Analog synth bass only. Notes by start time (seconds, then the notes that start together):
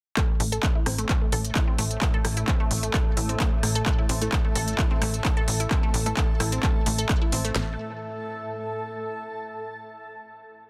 0.40 A1
0.86 A1
1.32 A1
1.79 A1
2.25 A1
2.71 A1
3.17 A1
3.63 A1
4.09 A1
4.56 A1
5.02 A1
5.48 A1
5.94 A1
6.40 A1
6.86 A1
7.32 A1
7.55 A1